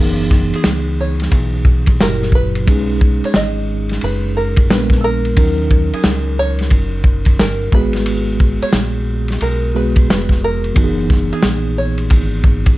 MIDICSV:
0, 0, Header, 1, 6, 480
1, 0, Start_track
1, 0, Tempo, 674157
1, 1904, Time_signature, 4, 2, 24, 8
1, 9099, End_track
2, 0, Start_track
2, 0, Title_t, "Five-string banjo"
2, 0, Program_c, 0, 105
2, 0, Note_on_c, 0, 70, 85
2, 395, Note_on_c, 0, 68, 79
2, 408, Note_off_c, 0, 70, 0
2, 717, Note_on_c, 0, 73, 80
2, 720, Note_off_c, 0, 68, 0
2, 1435, Note_off_c, 0, 73, 0
2, 1438, Note_on_c, 0, 70, 97
2, 1655, Note_off_c, 0, 70, 0
2, 1674, Note_on_c, 0, 71, 90
2, 2312, Note_off_c, 0, 71, 0
2, 2315, Note_on_c, 0, 73, 77
2, 2392, Note_off_c, 0, 73, 0
2, 2394, Note_on_c, 0, 75, 99
2, 2874, Note_off_c, 0, 75, 0
2, 2877, Note_on_c, 0, 71, 89
2, 3107, Note_off_c, 0, 71, 0
2, 3110, Note_on_c, 0, 70, 79
2, 3350, Note_off_c, 0, 70, 0
2, 3353, Note_on_c, 0, 71, 97
2, 3560, Note_off_c, 0, 71, 0
2, 3565, Note_on_c, 0, 69, 68
2, 3590, Note_on_c, 0, 70, 103
2, 3592, Note_off_c, 0, 69, 0
2, 4196, Note_off_c, 0, 70, 0
2, 4228, Note_on_c, 0, 68, 88
2, 4551, Note_on_c, 0, 73, 101
2, 4557, Note_off_c, 0, 68, 0
2, 5265, Note_off_c, 0, 73, 0
2, 5268, Note_on_c, 0, 70, 92
2, 5511, Note_off_c, 0, 70, 0
2, 5513, Note_on_c, 0, 71, 94
2, 6138, Note_off_c, 0, 71, 0
2, 6141, Note_on_c, 0, 73, 93
2, 6706, Note_off_c, 0, 73, 0
2, 6708, Note_on_c, 0, 70, 82
2, 6946, Note_off_c, 0, 70, 0
2, 6949, Note_on_c, 0, 71, 80
2, 7170, Note_off_c, 0, 71, 0
2, 7193, Note_on_c, 0, 71, 89
2, 7433, Note_off_c, 0, 71, 0
2, 7436, Note_on_c, 0, 70, 96
2, 8065, Note_on_c, 0, 68, 84
2, 8086, Note_off_c, 0, 70, 0
2, 8389, Note_on_c, 0, 73, 82
2, 8395, Note_off_c, 0, 68, 0
2, 9078, Note_off_c, 0, 73, 0
2, 9099, End_track
3, 0, Start_track
3, 0, Title_t, "Tine electric piano"
3, 0, Program_c, 1, 4
3, 0, Note_on_c, 1, 52, 67
3, 0, Note_on_c, 1, 59, 58
3, 0, Note_on_c, 1, 63, 59
3, 0, Note_on_c, 1, 68, 65
3, 1391, Note_off_c, 1, 52, 0
3, 1395, Note_off_c, 1, 59, 0
3, 1397, Note_off_c, 1, 63, 0
3, 1401, Note_off_c, 1, 68, 0
3, 1425, Note_on_c, 1, 54, 56
3, 1430, Note_on_c, 1, 57, 41
3, 1430, Note_on_c, 1, 64, 49
3, 1435, Note_on_c, 1, 67, 59
3, 1474, Note_on_c, 1, 46, 54
3, 1488, Note_off_c, 1, 57, 0
3, 1898, Note_on_c, 1, 56, 65
3, 1904, Note_off_c, 1, 54, 0
3, 1907, Note_off_c, 1, 64, 0
3, 1910, Note_off_c, 1, 67, 0
3, 1910, Note_on_c, 1, 61, 62
3, 1913, Note_on_c, 1, 63, 60
3, 1917, Note_on_c, 1, 68, 68
3, 1929, Note_off_c, 1, 46, 0
3, 3313, Note_off_c, 1, 56, 0
3, 3318, Note_off_c, 1, 61, 0
3, 3320, Note_off_c, 1, 63, 0
3, 3322, Note_off_c, 1, 68, 0
3, 3344, Note_on_c, 1, 56, 55
3, 3346, Note_on_c, 1, 59, 52
3, 3350, Note_on_c, 1, 62, 57
3, 3352, Note_on_c, 1, 70, 61
3, 3815, Note_on_c, 1, 54, 60
3, 3821, Note_on_c, 1, 61, 55
3, 3824, Note_off_c, 1, 56, 0
3, 3825, Note_off_c, 1, 59, 0
3, 3825, Note_off_c, 1, 70, 0
3, 3826, Note_on_c, 1, 63, 59
3, 3827, Note_off_c, 1, 62, 0
3, 3834, Note_on_c, 1, 70, 72
3, 5471, Note_off_c, 1, 54, 0
3, 5474, Note_off_c, 1, 61, 0
3, 5477, Note_off_c, 1, 63, 0
3, 5480, Note_off_c, 1, 70, 0
3, 5495, Note_on_c, 1, 56, 60
3, 5503, Note_on_c, 1, 59, 55
3, 5509, Note_on_c, 1, 66, 52
3, 5516, Note_on_c, 1, 68, 68
3, 6911, Note_off_c, 1, 56, 0
3, 6915, Note_off_c, 1, 59, 0
3, 6918, Note_off_c, 1, 66, 0
3, 6921, Note_off_c, 1, 68, 0
3, 6936, Note_on_c, 1, 56, 46
3, 6937, Note_on_c, 1, 59, 43
3, 6940, Note_on_c, 1, 66, 43
3, 6941, Note_on_c, 1, 68, 51
3, 7645, Note_off_c, 1, 59, 0
3, 7649, Note_on_c, 1, 52, 62
3, 7654, Note_on_c, 1, 59, 61
3, 7658, Note_off_c, 1, 66, 0
3, 7660, Note_off_c, 1, 56, 0
3, 7661, Note_on_c, 1, 63, 62
3, 7662, Note_off_c, 1, 68, 0
3, 7666, Note_on_c, 1, 66, 55
3, 7714, Note_on_c, 1, 68, 73
3, 7726, Note_off_c, 1, 66, 0
3, 9068, Note_off_c, 1, 52, 0
3, 9071, Note_off_c, 1, 59, 0
3, 9074, Note_off_c, 1, 63, 0
3, 9099, Note_off_c, 1, 68, 0
3, 9099, End_track
4, 0, Start_track
4, 0, Title_t, "Fingered electric bass"
4, 0, Program_c, 2, 33
4, 0, Note_on_c, 2, 30, 101
4, 362, Note_off_c, 2, 30, 0
4, 465, Note_on_c, 2, 37, 80
4, 920, Note_off_c, 2, 37, 0
4, 939, Note_on_c, 2, 35, 80
4, 1397, Note_off_c, 2, 35, 0
4, 1427, Note_on_c, 2, 30, 88
4, 1882, Note_off_c, 2, 30, 0
4, 2389, Note_on_c, 2, 32, 84
4, 2842, Note_off_c, 2, 32, 0
4, 2868, Note_on_c, 2, 30, 79
4, 3322, Note_off_c, 2, 30, 0
4, 3348, Note_on_c, 2, 34, 93
4, 3802, Note_off_c, 2, 34, 0
4, 3826, Note_on_c, 2, 39, 87
4, 4202, Note_off_c, 2, 39, 0
4, 4308, Note_on_c, 2, 37, 88
4, 4762, Note_off_c, 2, 37, 0
4, 4780, Note_on_c, 2, 30, 89
4, 5238, Note_off_c, 2, 30, 0
4, 5269, Note_on_c, 2, 31, 85
4, 5495, Note_off_c, 2, 31, 0
4, 5500, Note_on_c, 2, 32, 79
4, 6111, Note_off_c, 2, 32, 0
4, 6223, Note_on_c, 2, 34, 85
4, 6680, Note_off_c, 2, 34, 0
4, 6704, Note_on_c, 2, 35, 83
4, 7160, Note_off_c, 2, 35, 0
4, 7185, Note_on_c, 2, 29, 78
4, 7640, Note_off_c, 2, 29, 0
4, 7664, Note_on_c, 2, 30, 88
4, 8041, Note_off_c, 2, 30, 0
4, 8148, Note_on_c, 2, 34, 87
4, 8602, Note_off_c, 2, 34, 0
4, 8622, Note_on_c, 2, 32, 86
4, 9079, Note_off_c, 2, 32, 0
4, 9099, End_track
5, 0, Start_track
5, 0, Title_t, "Muted fingered electric bass strokes"
5, 4225, Note_on_c, 9, 29, 49
5, 4296, Note_off_c, 9, 29, 0
5, 6142, Note_on_c, 9, 29, 46
5, 6213, Note_off_c, 9, 29, 0
5, 8066, Note_on_c, 9, 29, 47
5, 8138, Note_off_c, 9, 29, 0
5, 9099, End_track
6, 0, Start_track
6, 0, Title_t, "Drums"
6, 220, Note_on_c, 9, 36, 87
6, 224, Note_on_c, 9, 38, 30
6, 291, Note_off_c, 9, 36, 0
6, 295, Note_off_c, 9, 38, 0
6, 381, Note_on_c, 9, 51, 51
6, 452, Note_off_c, 9, 51, 0
6, 455, Note_on_c, 9, 38, 109
6, 459, Note_on_c, 9, 44, 55
6, 459, Note_on_c, 9, 51, 77
6, 526, Note_off_c, 9, 38, 0
6, 530, Note_off_c, 9, 44, 0
6, 530, Note_off_c, 9, 51, 0
6, 852, Note_on_c, 9, 51, 55
6, 869, Note_on_c, 9, 38, 35
6, 923, Note_off_c, 9, 51, 0
6, 936, Note_on_c, 9, 51, 65
6, 938, Note_on_c, 9, 36, 93
6, 940, Note_off_c, 9, 38, 0
6, 1007, Note_off_c, 9, 51, 0
6, 1010, Note_off_c, 9, 36, 0
6, 1174, Note_on_c, 9, 36, 93
6, 1245, Note_off_c, 9, 36, 0
6, 1326, Note_on_c, 9, 51, 55
6, 1333, Note_on_c, 9, 36, 94
6, 1397, Note_off_c, 9, 51, 0
6, 1404, Note_off_c, 9, 36, 0
6, 1428, Note_on_c, 9, 38, 89
6, 1428, Note_on_c, 9, 44, 42
6, 1428, Note_on_c, 9, 51, 63
6, 1499, Note_off_c, 9, 38, 0
6, 1500, Note_off_c, 9, 44, 0
6, 1500, Note_off_c, 9, 51, 0
6, 1581, Note_on_c, 9, 38, 31
6, 1652, Note_off_c, 9, 38, 0
6, 1653, Note_on_c, 9, 36, 80
6, 1724, Note_off_c, 9, 36, 0
6, 1817, Note_on_c, 9, 51, 51
6, 1889, Note_off_c, 9, 51, 0
6, 1905, Note_on_c, 9, 36, 116
6, 1906, Note_on_c, 9, 51, 82
6, 1976, Note_off_c, 9, 36, 0
6, 1977, Note_off_c, 9, 51, 0
6, 2145, Note_on_c, 9, 36, 97
6, 2216, Note_off_c, 9, 36, 0
6, 2306, Note_on_c, 9, 51, 48
6, 2377, Note_off_c, 9, 51, 0
6, 2377, Note_on_c, 9, 38, 120
6, 2381, Note_on_c, 9, 44, 55
6, 2381, Note_on_c, 9, 51, 72
6, 2448, Note_off_c, 9, 38, 0
6, 2452, Note_off_c, 9, 44, 0
6, 2452, Note_off_c, 9, 51, 0
6, 2772, Note_on_c, 9, 51, 49
6, 2789, Note_on_c, 9, 38, 35
6, 2843, Note_off_c, 9, 51, 0
6, 2856, Note_on_c, 9, 51, 74
6, 2860, Note_off_c, 9, 38, 0
6, 2928, Note_off_c, 9, 51, 0
6, 3249, Note_on_c, 9, 51, 67
6, 3255, Note_on_c, 9, 36, 99
6, 3320, Note_off_c, 9, 51, 0
6, 3326, Note_off_c, 9, 36, 0
6, 3350, Note_on_c, 9, 38, 108
6, 3351, Note_on_c, 9, 44, 41
6, 3351, Note_on_c, 9, 51, 69
6, 3421, Note_off_c, 9, 38, 0
6, 3422, Note_off_c, 9, 44, 0
6, 3422, Note_off_c, 9, 51, 0
6, 3488, Note_on_c, 9, 36, 86
6, 3500, Note_on_c, 9, 38, 33
6, 3559, Note_off_c, 9, 36, 0
6, 3571, Note_off_c, 9, 38, 0
6, 3737, Note_on_c, 9, 51, 46
6, 3808, Note_off_c, 9, 51, 0
6, 3820, Note_on_c, 9, 51, 75
6, 3824, Note_on_c, 9, 36, 115
6, 3891, Note_off_c, 9, 51, 0
6, 3895, Note_off_c, 9, 36, 0
6, 4063, Note_on_c, 9, 36, 93
6, 4134, Note_off_c, 9, 36, 0
6, 4225, Note_on_c, 9, 51, 51
6, 4296, Note_off_c, 9, 51, 0
6, 4298, Note_on_c, 9, 38, 113
6, 4302, Note_on_c, 9, 44, 53
6, 4302, Note_on_c, 9, 51, 71
6, 4370, Note_off_c, 9, 38, 0
6, 4374, Note_off_c, 9, 44, 0
6, 4374, Note_off_c, 9, 51, 0
6, 4689, Note_on_c, 9, 51, 47
6, 4707, Note_on_c, 9, 38, 35
6, 4761, Note_off_c, 9, 51, 0
6, 4772, Note_on_c, 9, 51, 70
6, 4778, Note_off_c, 9, 38, 0
6, 4778, Note_on_c, 9, 36, 84
6, 4844, Note_off_c, 9, 51, 0
6, 4849, Note_off_c, 9, 36, 0
6, 5012, Note_on_c, 9, 36, 87
6, 5083, Note_off_c, 9, 36, 0
6, 5162, Note_on_c, 9, 51, 63
6, 5171, Note_on_c, 9, 36, 91
6, 5233, Note_off_c, 9, 51, 0
6, 5242, Note_off_c, 9, 36, 0
6, 5265, Note_on_c, 9, 38, 84
6, 5265, Note_on_c, 9, 44, 44
6, 5265, Note_on_c, 9, 51, 69
6, 5336, Note_off_c, 9, 38, 0
6, 5337, Note_off_c, 9, 44, 0
6, 5337, Note_off_c, 9, 51, 0
6, 5499, Note_on_c, 9, 36, 97
6, 5570, Note_off_c, 9, 36, 0
6, 5646, Note_on_c, 9, 51, 52
6, 5660, Note_on_c, 9, 38, 30
6, 5717, Note_off_c, 9, 51, 0
6, 5732, Note_off_c, 9, 38, 0
6, 5737, Note_on_c, 9, 51, 83
6, 5808, Note_off_c, 9, 51, 0
6, 5981, Note_on_c, 9, 36, 84
6, 6053, Note_off_c, 9, 36, 0
6, 6140, Note_on_c, 9, 51, 49
6, 6211, Note_off_c, 9, 51, 0
6, 6213, Note_on_c, 9, 38, 112
6, 6217, Note_on_c, 9, 44, 54
6, 6217, Note_on_c, 9, 51, 76
6, 6284, Note_off_c, 9, 38, 0
6, 6288, Note_off_c, 9, 44, 0
6, 6288, Note_off_c, 9, 51, 0
6, 6608, Note_on_c, 9, 51, 52
6, 6625, Note_on_c, 9, 38, 30
6, 6679, Note_off_c, 9, 51, 0
6, 6696, Note_off_c, 9, 38, 0
6, 6697, Note_on_c, 9, 51, 73
6, 6768, Note_off_c, 9, 51, 0
6, 7090, Note_on_c, 9, 51, 65
6, 7094, Note_on_c, 9, 36, 91
6, 7161, Note_off_c, 9, 51, 0
6, 7165, Note_off_c, 9, 36, 0
6, 7194, Note_on_c, 9, 38, 97
6, 7195, Note_on_c, 9, 44, 52
6, 7195, Note_on_c, 9, 51, 65
6, 7265, Note_off_c, 9, 38, 0
6, 7266, Note_off_c, 9, 44, 0
6, 7266, Note_off_c, 9, 51, 0
6, 7328, Note_on_c, 9, 36, 79
6, 7340, Note_on_c, 9, 38, 29
6, 7399, Note_off_c, 9, 36, 0
6, 7412, Note_off_c, 9, 38, 0
6, 7575, Note_on_c, 9, 51, 47
6, 7647, Note_off_c, 9, 51, 0
6, 7659, Note_on_c, 9, 51, 81
6, 7663, Note_on_c, 9, 36, 125
6, 7730, Note_off_c, 9, 51, 0
6, 7734, Note_off_c, 9, 36, 0
6, 7903, Note_on_c, 9, 36, 95
6, 7909, Note_on_c, 9, 38, 32
6, 7974, Note_off_c, 9, 36, 0
6, 7980, Note_off_c, 9, 38, 0
6, 8064, Note_on_c, 9, 51, 52
6, 8135, Note_off_c, 9, 51, 0
6, 8135, Note_on_c, 9, 38, 114
6, 8139, Note_on_c, 9, 44, 55
6, 8139, Note_on_c, 9, 51, 73
6, 8206, Note_off_c, 9, 38, 0
6, 8210, Note_off_c, 9, 44, 0
6, 8210, Note_off_c, 9, 51, 0
6, 8528, Note_on_c, 9, 51, 51
6, 8599, Note_off_c, 9, 51, 0
6, 8615, Note_on_c, 9, 51, 77
6, 8620, Note_on_c, 9, 36, 94
6, 8686, Note_off_c, 9, 51, 0
6, 8692, Note_off_c, 9, 36, 0
6, 8856, Note_on_c, 9, 36, 96
6, 8927, Note_off_c, 9, 36, 0
6, 9013, Note_on_c, 9, 51, 62
6, 9017, Note_on_c, 9, 36, 91
6, 9085, Note_off_c, 9, 51, 0
6, 9088, Note_off_c, 9, 36, 0
6, 9099, End_track
0, 0, End_of_file